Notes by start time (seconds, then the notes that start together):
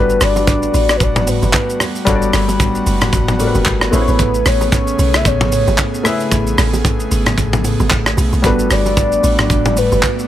Already playing: G1 G3 A3 B3 D4 F#4 A4 B4
0.10 shaker
0.21 G1 D5, cross-stick, open hi-hat, low bongo, shaker
0.36 low bongo, shaker
0.47 kick, hi-hat pedal, high bongo, shaker
0.63 shaker
0.74 A1, open hi-hat, shaker
0.89 D5, cross-stick, shaker
0.97 G1 B4, kick, hi-hat pedal, low conga
1.01 D5, shaker
1.16 mid tom, shaker
1.27 B4, open hi-hat, high bongo, shaker
1.42 F#1, low bongo, shaker
1.53 kick, clap, hi-hat pedal, high bongo, shaker
1.70 shaker
1.80 cross-stick, open hi-hat, low bongo, low conga, shaker
1.95 shaker
2.05 G1 G3 D4 F#4 A4, kick, hi-hat pedal, low conga, shaker
2.09 C#5
2.15 D5
2.22 shaker
2.33 G1, cross-stick, open hi-hat, low bongo, shaker
2.48 low bongo, shaker
2.60 kick, hi-hat pedal, high bongo, shaker
2.75 shaker
2.86 F#1, open hi-hat, shaker
3.01 cross-stick, mid tom, shaker
3.13 G1, kick, hi-hat pedal, low conga, shaker
3.28 mid tom, shaker
3.39 G3 D4 F#4 A4 A#4, open hi-hat, high bongo, shaker
3.47 B4
3.55 F#1, low bongo, shaker
3.66 G1, kick, clap, hi-hat pedal, high bongo, shaker
3.81 cross-stick, shaker
3.91 A1 C#3 A3 E4 G#4 B4 C5 C#5, open hi-hat, low bongo, low conga, shaker
4.01 C#5
4.08 A1 B4, shaker
4.19 A1, kick, hi-hat pedal, low conga, shaker
4.34 shaker
4.46 A1 C#5, cross-stick, open hi-hat, low bongo, shaker
4.61 low bongo, shaker
4.72 C#5, kick, hi-hat pedal, high bongo, shaker
4.87 shaker
4.99 B1, open hi-hat, shaker
5.14 E5, cross-stick, shaker
5.25 A1 C#5, kick, hi-hat pedal, low conga, shaker
5.41 mid tom, shaker
5.52 open hi-hat, high bongo, shaker
5.67 G#1, low bongo, shaker
5.78 kick, clap, hi-hat pedal, high bongo, shaker
5.94 shaker
6.03 A3 E4 G#4 B4, cross-stick, open hi-hat, low bongo, low conga, shaker
6.07 E5
6.20 shaker
6.31 A1, kick, hi-hat pedal, low conga, shaker
6.47 shaker
6.58 A1, cross-stick, open hi-hat, low bongo, shaker
6.73 low bongo, shaker
6.85 kick, hi-hat pedal, high bongo, shaker
7.00 shaker
7.11 G#1, open hi-hat, shaker
7.26 cross-stick, mid tom, shaker
7.38 A1, kick, hi-hat pedal, low conga, shaker
7.53 mid tom, shaker
7.64 open hi-hat, high bongo, shaker
7.80 G#1, low bongo, shaker
7.90 A1, kick, clap, hi-hat pedal, high bongo, shaker
8.06 cross-stick, shaker
8.17 B1, open hi-hat, low bongo, low conga, shaker
8.33 B1, shaker
8.42 G1 G3 B3 D4 F#4 A4 B4, kick, hi-hat pedal, low conga, shaker
8.46 B4
8.59 shaker
8.70 G1 D5, cross-stick, open hi-hat, low bongo, shaker
8.86 low bongo, shaker
8.97 kick, hi-hat pedal, high bongo, shaker
9.12 shaker
9.24 A1, open hi-hat, shaker
9.38 D5, cross-stick, mid tom, shaker
9.50 G1, kick, hi-hat pedal, low conga, shaker
9.66 mid tom, shaker
9.77 B4, open hi-hat, high bongo, shaker
9.92 F#1, low bongo, shaker
10.03 kick, clap, hi-hat pedal, high bongo, shaker
10.19 shaker